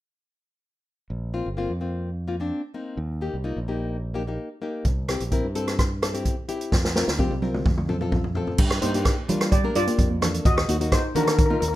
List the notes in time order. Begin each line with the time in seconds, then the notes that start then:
1.10 A#1
1.34 A#3 C4 F4
1.46 G1
1.57 A#3 C4 F4
1.70 F2
1.81 A#3 C4 F4
2.28 A#3 C4 F4
2.40 A#3 C4 D4
2.74 A#3 C4 D#4
2.97 D#2
3.21 A#3 D#4 G4
3.34 C2
3.44 A#3 D#4 F4
3.57 A#1
3.68 A#3 D#4 G4
4.14 A#3 D#4 G4
4.27 A#3 D#4 G4
4.62 A#3 D#4 G4
4.85 C2, kick, closed hi-hat
5.08 C4 E4 G4, cross-stick, closed hi-hat
5.20 A#1, closed hi-hat
5.32 C4 E4 A#4, kick, closed hi-hat
5.44 G2
5.55 C4 E4 A4, closed hi-hat
5.68 cross-stick, closed hi-hat
5.79 kick, cross-stick, closed hi-hat
6.02 C4 E4 A4, cross-stick, closed hi-hat
6.13 C4 E4 G4, closed hi-hat
6.25 kick, closed hi-hat
6.49 C4 E4 G4, closed hi-hat
6.61 closed hi-hat
6.72 F2, kick, snare
6.85 snare
6.96 C4 F4 A#4, snare
7.08 D2, snare
7.19 C4 F4 G4, kick, high tom
7.31 C2, high tom
7.42 C4 F4 A#4, high tom
7.54 mid tom
7.65 F2, kick, mid tom
7.78 mid tom
7.89 C4 F4 A4, mid tom
8.01 C4 F4 A4, mid tom
8.12 kick, mid tom
8.24 floor tom
8.35 C4 F4 A4, floor tom
8.47 floor tom
8.58 G2, kick, crash
8.70 cross-stick
8.82 G2 A#3 D4 D#4 G4 C5, closed hi-hat, high conga
8.94 A#3 D4 G4, closed hi-hat
9.05 kick, cross-stick, closed hi-hat
9.28 G3 A#3 D4 F4, closed hi-hat, low conga
9.41 cross-stick, closed hi-hat
9.52 G4 D5, kick, closed hi-hat
9.64 A#3 D4 A#4, high conga
9.75 G2 F4 D5, closed hi-hat
9.87 A#3 D4 G4, closed hi-hat, high conga
9.99 F2, kick, closed hi-hat
10.10 high conga
10.22 A#3 D4 A4, cross-stick, closed hi-hat, low conga
10.34 closed hi-hat
10.45 D#2 F#4 D#5, kick, closed hi-hat
10.58 cross-stick
10.68 D#2 A#3 D#4 F#4, closed hi-hat, high conga
10.80 A#3 D#4 F#4, closed hi-hat
10.92 D#4 C5, kick, cross-stick, closed hi-hat
11.15 D#3 A#3 D4 D#4 F#4 A#4, closed hi-hat, low conga
11.23 A#4
11.27 A#4, cross-stick, closed hi-hat
11.38 A#4, kick, closed hi-hat
11.46 A#4
11.50 A#3 D#4 F4 A#4, high conga
11.61 D#2 A#4, closed hi-hat
11.68 A#4